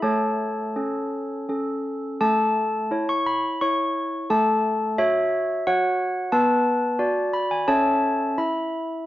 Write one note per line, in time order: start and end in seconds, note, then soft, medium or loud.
0.02 0.74 A3 medium
0.02 0.74 A4 medium
0.02 1.45 C#5 medium
0.02 1.44 A5 medium
0.76 1.45 C#4 soft
0.76 1.45 A4 soft
1.49 2.17 C#4 soft
1.49 2.17 A4 soft
2.20 2.89 A3 medium
2.20 2.89 A4 medium
2.20 3.05 A5 medium
2.91 3.58 E4 medium
2.91 3.58 C#5 medium
3.09 3.27 C#6 medium
3.26 3.60 B5 medium
3.61 4.26 E4 medium
3.61 4.26 C#5 medium
3.61 4.27 C#6 medium
4.30 4.97 A3 medium
4.30 4.97 A4 medium
4.30 4.96 A5 loud
4.98 5.62 F#4 medium
4.98 5.63 C#5 medium
4.98 5.64 E5 loud
5.67 6.29 F#4 medium
5.67 6.29 C#5 medium
5.67 6.30 F#5 medium
6.32 6.97 B3 medium
6.32 6.97 B4 medium
6.32 7.29 A5 loud
6.99 7.64 F#4 medium
6.99 7.64 D5 medium
7.33 7.51 B5 medium
7.51 7.68 G#5 medium
7.68 8.36 C#4 medium
7.68 8.34 A4 medium
7.68 8.36 C#5 medium
7.68 8.34 E5 medium
7.68 8.35 A5 loud
8.38 9.06 E4 medium
8.38 9.06 E5 medium
8.38 9.06 B5 medium